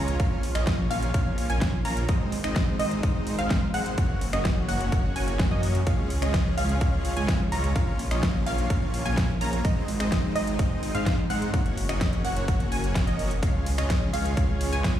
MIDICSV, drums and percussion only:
0, 0, Header, 1, 2, 480
1, 0, Start_track
1, 0, Key_signature, -5, "major"
1, 0, Tempo, 472441
1, 200, Time_signature, 4, 2, 24, 8
1, 15238, End_track
2, 0, Start_track
2, 0, Title_t, "Drums"
2, 81, Note_on_c, 9, 42, 54
2, 182, Note_off_c, 9, 42, 0
2, 200, Note_on_c, 9, 36, 127
2, 200, Note_on_c, 9, 42, 78
2, 301, Note_off_c, 9, 42, 0
2, 302, Note_off_c, 9, 36, 0
2, 440, Note_on_c, 9, 46, 110
2, 541, Note_off_c, 9, 46, 0
2, 560, Note_on_c, 9, 26, 78
2, 560, Note_on_c, 9, 42, 56
2, 662, Note_off_c, 9, 26, 0
2, 662, Note_off_c, 9, 42, 0
2, 680, Note_on_c, 9, 36, 125
2, 680, Note_on_c, 9, 38, 127
2, 680, Note_on_c, 9, 42, 81
2, 782, Note_off_c, 9, 36, 0
2, 782, Note_off_c, 9, 38, 0
2, 782, Note_off_c, 9, 42, 0
2, 921, Note_on_c, 9, 46, 110
2, 1022, Note_off_c, 9, 46, 0
2, 1042, Note_on_c, 9, 42, 53
2, 1143, Note_off_c, 9, 42, 0
2, 1160, Note_on_c, 9, 42, 85
2, 1161, Note_on_c, 9, 36, 124
2, 1262, Note_off_c, 9, 36, 0
2, 1262, Note_off_c, 9, 42, 0
2, 1401, Note_on_c, 9, 46, 108
2, 1502, Note_off_c, 9, 46, 0
2, 1521, Note_on_c, 9, 42, 54
2, 1623, Note_off_c, 9, 42, 0
2, 1640, Note_on_c, 9, 38, 120
2, 1640, Note_on_c, 9, 42, 76
2, 1641, Note_on_c, 9, 36, 124
2, 1742, Note_off_c, 9, 38, 0
2, 1742, Note_off_c, 9, 42, 0
2, 1743, Note_off_c, 9, 36, 0
2, 1879, Note_on_c, 9, 46, 111
2, 1981, Note_off_c, 9, 46, 0
2, 2000, Note_on_c, 9, 42, 55
2, 2101, Note_off_c, 9, 42, 0
2, 2119, Note_on_c, 9, 42, 77
2, 2121, Note_on_c, 9, 36, 125
2, 2221, Note_off_c, 9, 42, 0
2, 2223, Note_off_c, 9, 36, 0
2, 2360, Note_on_c, 9, 46, 113
2, 2462, Note_off_c, 9, 46, 0
2, 2480, Note_on_c, 9, 26, 81
2, 2480, Note_on_c, 9, 42, 53
2, 2582, Note_off_c, 9, 26, 0
2, 2582, Note_off_c, 9, 42, 0
2, 2599, Note_on_c, 9, 38, 127
2, 2599, Note_on_c, 9, 42, 80
2, 2601, Note_on_c, 9, 36, 127
2, 2701, Note_off_c, 9, 38, 0
2, 2701, Note_off_c, 9, 42, 0
2, 2703, Note_off_c, 9, 36, 0
2, 2840, Note_on_c, 9, 46, 109
2, 2941, Note_off_c, 9, 46, 0
2, 2961, Note_on_c, 9, 42, 51
2, 3062, Note_off_c, 9, 42, 0
2, 3081, Note_on_c, 9, 42, 77
2, 3082, Note_on_c, 9, 36, 127
2, 3182, Note_off_c, 9, 42, 0
2, 3183, Note_off_c, 9, 36, 0
2, 3319, Note_on_c, 9, 46, 116
2, 3421, Note_off_c, 9, 46, 0
2, 3440, Note_on_c, 9, 42, 53
2, 3541, Note_off_c, 9, 42, 0
2, 3560, Note_on_c, 9, 38, 122
2, 3560, Note_on_c, 9, 42, 75
2, 3562, Note_on_c, 9, 36, 127
2, 3662, Note_off_c, 9, 38, 0
2, 3662, Note_off_c, 9, 42, 0
2, 3663, Note_off_c, 9, 36, 0
2, 3800, Note_on_c, 9, 46, 112
2, 3901, Note_off_c, 9, 46, 0
2, 3920, Note_on_c, 9, 42, 52
2, 4022, Note_off_c, 9, 42, 0
2, 4040, Note_on_c, 9, 42, 75
2, 4042, Note_on_c, 9, 36, 124
2, 4142, Note_off_c, 9, 42, 0
2, 4143, Note_off_c, 9, 36, 0
2, 4281, Note_on_c, 9, 46, 112
2, 4383, Note_off_c, 9, 46, 0
2, 4401, Note_on_c, 9, 26, 81
2, 4401, Note_on_c, 9, 42, 52
2, 4502, Note_off_c, 9, 26, 0
2, 4502, Note_off_c, 9, 42, 0
2, 4521, Note_on_c, 9, 38, 122
2, 4521, Note_on_c, 9, 42, 78
2, 4522, Note_on_c, 9, 36, 127
2, 4623, Note_off_c, 9, 36, 0
2, 4623, Note_off_c, 9, 38, 0
2, 4623, Note_off_c, 9, 42, 0
2, 4762, Note_on_c, 9, 46, 110
2, 4864, Note_off_c, 9, 46, 0
2, 4882, Note_on_c, 9, 42, 49
2, 4984, Note_off_c, 9, 42, 0
2, 5001, Note_on_c, 9, 42, 79
2, 5002, Note_on_c, 9, 36, 123
2, 5103, Note_off_c, 9, 36, 0
2, 5103, Note_off_c, 9, 42, 0
2, 5241, Note_on_c, 9, 46, 116
2, 5343, Note_off_c, 9, 46, 0
2, 5362, Note_on_c, 9, 42, 49
2, 5463, Note_off_c, 9, 42, 0
2, 5481, Note_on_c, 9, 36, 127
2, 5481, Note_on_c, 9, 38, 111
2, 5481, Note_on_c, 9, 42, 73
2, 5582, Note_off_c, 9, 38, 0
2, 5582, Note_off_c, 9, 42, 0
2, 5583, Note_off_c, 9, 36, 0
2, 5721, Note_on_c, 9, 46, 113
2, 5822, Note_off_c, 9, 46, 0
2, 5841, Note_on_c, 9, 42, 49
2, 5943, Note_off_c, 9, 42, 0
2, 5960, Note_on_c, 9, 42, 77
2, 5961, Note_on_c, 9, 36, 120
2, 6062, Note_off_c, 9, 42, 0
2, 6063, Note_off_c, 9, 36, 0
2, 6200, Note_on_c, 9, 46, 113
2, 6302, Note_off_c, 9, 46, 0
2, 6322, Note_on_c, 9, 26, 84
2, 6322, Note_on_c, 9, 42, 53
2, 6423, Note_off_c, 9, 26, 0
2, 6423, Note_off_c, 9, 42, 0
2, 6441, Note_on_c, 9, 36, 122
2, 6441, Note_on_c, 9, 38, 116
2, 6441, Note_on_c, 9, 42, 78
2, 6543, Note_off_c, 9, 36, 0
2, 6543, Note_off_c, 9, 38, 0
2, 6543, Note_off_c, 9, 42, 0
2, 6681, Note_on_c, 9, 46, 108
2, 6783, Note_off_c, 9, 46, 0
2, 6800, Note_on_c, 9, 42, 50
2, 6902, Note_off_c, 9, 42, 0
2, 6920, Note_on_c, 9, 42, 78
2, 6921, Note_on_c, 9, 36, 118
2, 7021, Note_off_c, 9, 42, 0
2, 7023, Note_off_c, 9, 36, 0
2, 7160, Note_on_c, 9, 46, 113
2, 7262, Note_off_c, 9, 46, 0
2, 7281, Note_on_c, 9, 42, 52
2, 7382, Note_off_c, 9, 42, 0
2, 7401, Note_on_c, 9, 36, 120
2, 7401, Note_on_c, 9, 38, 110
2, 7401, Note_on_c, 9, 42, 76
2, 7503, Note_off_c, 9, 36, 0
2, 7503, Note_off_c, 9, 38, 0
2, 7503, Note_off_c, 9, 42, 0
2, 7641, Note_on_c, 9, 46, 106
2, 7743, Note_off_c, 9, 46, 0
2, 7761, Note_on_c, 9, 42, 51
2, 7863, Note_off_c, 9, 42, 0
2, 7880, Note_on_c, 9, 42, 80
2, 7881, Note_on_c, 9, 36, 119
2, 7982, Note_off_c, 9, 42, 0
2, 7983, Note_off_c, 9, 36, 0
2, 8120, Note_on_c, 9, 46, 102
2, 8222, Note_off_c, 9, 46, 0
2, 8242, Note_on_c, 9, 26, 86
2, 8242, Note_on_c, 9, 42, 53
2, 8343, Note_off_c, 9, 26, 0
2, 8343, Note_off_c, 9, 42, 0
2, 8360, Note_on_c, 9, 38, 120
2, 8360, Note_on_c, 9, 42, 84
2, 8361, Note_on_c, 9, 36, 118
2, 8462, Note_off_c, 9, 38, 0
2, 8462, Note_off_c, 9, 42, 0
2, 8463, Note_off_c, 9, 36, 0
2, 8600, Note_on_c, 9, 46, 106
2, 8702, Note_off_c, 9, 46, 0
2, 8722, Note_on_c, 9, 42, 51
2, 8824, Note_off_c, 9, 42, 0
2, 8841, Note_on_c, 9, 36, 119
2, 8841, Note_on_c, 9, 42, 82
2, 8942, Note_off_c, 9, 36, 0
2, 8943, Note_off_c, 9, 42, 0
2, 9081, Note_on_c, 9, 46, 107
2, 9183, Note_off_c, 9, 46, 0
2, 9201, Note_on_c, 9, 42, 53
2, 9303, Note_off_c, 9, 42, 0
2, 9321, Note_on_c, 9, 36, 116
2, 9321, Note_on_c, 9, 38, 111
2, 9321, Note_on_c, 9, 42, 77
2, 9423, Note_off_c, 9, 36, 0
2, 9423, Note_off_c, 9, 38, 0
2, 9423, Note_off_c, 9, 42, 0
2, 9561, Note_on_c, 9, 46, 106
2, 9663, Note_off_c, 9, 46, 0
2, 9681, Note_on_c, 9, 42, 53
2, 9783, Note_off_c, 9, 42, 0
2, 9801, Note_on_c, 9, 42, 83
2, 9802, Note_on_c, 9, 36, 114
2, 9903, Note_off_c, 9, 36, 0
2, 9903, Note_off_c, 9, 42, 0
2, 10041, Note_on_c, 9, 46, 104
2, 10143, Note_off_c, 9, 46, 0
2, 10162, Note_on_c, 9, 26, 82
2, 10162, Note_on_c, 9, 42, 55
2, 10263, Note_off_c, 9, 26, 0
2, 10263, Note_off_c, 9, 42, 0
2, 10281, Note_on_c, 9, 38, 121
2, 10281, Note_on_c, 9, 42, 87
2, 10282, Note_on_c, 9, 36, 116
2, 10383, Note_off_c, 9, 36, 0
2, 10383, Note_off_c, 9, 38, 0
2, 10383, Note_off_c, 9, 42, 0
2, 10522, Note_on_c, 9, 46, 102
2, 10623, Note_off_c, 9, 46, 0
2, 10641, Note_on_c, 9, 42, 53
2, 10743, Note_off_c, 9, 42, 0
2, 10761, Note_on_c, 9, 42, 84
2, 10762, Note_on_c, 9, 36, 117
2, 10863, Note_off_c, 9, 36, 0
2, 10863, Note_off_c, 9, 42, 0
2, 11001, Note_on_c, 9, 46, 103
2, 11103, Note_off_c, 9, 46, 0
2, 11122, Note_on_c, 9, 42, 54
2, 11223, Note_off_c, 9, 42, 0
2, 11241, Note_on_c, 9, 36, 115
2, 11242, Note_on_c, 9, 38, 115
2, 11242, Note_on_c, 9, 42, 80
2, 11343, Note_off_c, 9, 36, 0
2, 11344, Note_off_c, 9, 38, 0
2, 11344, Note_off_c, 9, 42, 0
2, 11482, Note_on_c, 9, 46, 104
2, 11584, Note_off_c, 9, 46, 0
2, 11603, Note_on_c, 9, 42, 54
2, 11705, Note_off_c, 9, 42, 0
2, 11721, Note_on_c, 9, 36, 113
2, 11722, Note_on_c, 9, 42, 80
2, 11823, Note_off_c, 9, 36, 0
2, 11824, Note_off_c, 9, 42, 0
2, 11844, Note_on_c, 9, 42, 37
2, 11945, Note_off_c, 9, 42, 0
2, 11963, Note_on_c, 9, 46, 107
2, 12065, Note_off_c, 9, 46, 0
2, 12083, Note_on_c, 9, 26, 80
2, 12083, Note_on_c, 9, 42, 57
2, 12184, Note_off_c, 9, 26, 0
2, 12184, Note_off_c, 9, 42, 0
2, 12201, Note_on_c, 9, 36, 117
2, 12203, Note_on_c, 9, 38, 122
2, 12203, Note_on_c, 9, 42, 87
2, 12303, Note_off_c, 9, 36, 0
2, 12305, Note_off_c, 9, 38, 0
2, 12305, Note_off_c, 9, 42, 0
2, 12323, Note_on_c, 9, 42, 38
2, 12425, Note_off_c, 9, 42, 0
2, 12443, Note_on_c, 9, 46, 101
2, 12544, Note_off_c, 9, 46, 0
2, 12562, Note_on_c, 9, 42, 54
2, 12664, Note_off_c, 9, 42, 0
2, 12681, Note_on_c, 9, 36, 120
2, 12683, Note_on_c, 9, 42, 85
2, 12783, Note_off_c, 9, 36, 0
2, 12785, Note_off_c, 9, 42, 0
2, 12803, Note_on_c, 9, 42, 40
2, 12905, Note_off_c, 9, 42, 0
2, 12922, Note_on_c, 9, 46, 105
2, 13024, Note_off_c, 9, 46, 0
2, 13043, Note_on_c, 9, 42, 55
2, 13145, Note_off_c, 9, 42, 0
2, 13161, Note_on_c, 9, 36, 120
2, 13162, Note_on_c, 9, 42, 85
2, 13163, Note_on_c, 9, 38, 118
2, 13263, Note_off_c, 9, 36, 0
2, 13264, Note_off_c, 9, 38, 0
2, 13264, Note_off_c, 9, 42, 0
2, 13283, Note_on_c, 9, 42, 39
2, 13385, Note_off_c, 9, 42, 0
2, 13403, Note_on_c, 9, 46, 100
2, 13505, Note_off_c, 9, 46, 0
2, 13523, Note_on_c, 9, 42, 58
2, 13625, Note_off_c, 9, 42, 0
2, 13641, Note_on_c, 9, 36, 119
2, 13643, Note_on_c, 9, 42, 86
2, 13743, Note_off_c, 9, 36, 0
2, 13745, Note_off_c, 9, 42, 0
2, 13883, Note_on_c, 9, 46, 110
2, 13883, Note_on_c, 9, 51, 83
2, 13985, Note_off_c, 9, 46, 0
2, 13985, Note_off_c, 9, 51, 0
2, 14003, Note_on_c, 9, 26, 79
2, 14003, Note_on_c, 9, 42, 57
2, 14105, Note_off_c, 9, 26, 0
2, 14105, Note_off_c, 9, 42, 0
2, 14121, Note_on_c, 9, 36, 122
2, 14123, Note_on_c, 9, 38, 127
2, 14123, Note_on_c, 9, 42, 88
2, 14223, Note_off_c, 9, 36, 0
2, 14224, Note_off_c, 9, 38, 0
2, 14224, Note_off_c, 9, 42, 0
2, 14361, Note_on_c, 9, 46, 106
2, 14361, Note_on_c, 9, 51, 77
2, 14463, Note_off_c, 9, 46, 0
2, 14463, Note_off_c, 9, 51, 0
2, 14482, Note_on_c, 9, 42, 55
2, 14584, Note_off_c, 9, 42, 0
2, 14601, Note_on_c, 9, 36, 122
2, 14601, Note_on_c, 9, 42, 84
2, 14703, Note_off_c, 9, 36, 0
2, 14703, Note_off_c, 9, 42, 0
2, 14841, Note_on_c, 9, 46, 111
2, 14841, Note_on_c, 9, 51, 80
2, 14943, Note_off_c, 9, 46, 0
2, 14943, Note_off_c, 9, 51, 0
2, 14961, Note_on_c, 9, 42, 56
2, 15063, Note_off_c, 9, 42, 0
2, 15081, Note_on_c, 9, 36, 117
2, 15082, Note_on_c, 9, 38, 119
2, 15082, Note_on_c, 9, 42, 82
2, 15183, Note_off_c, 9, 36, 0
2, 15184, Note_off_c, 9, 38, 0
2, 15184, Note_off_c, 9, 42, 0
2, 15238, End_track
0, 0, End_of_file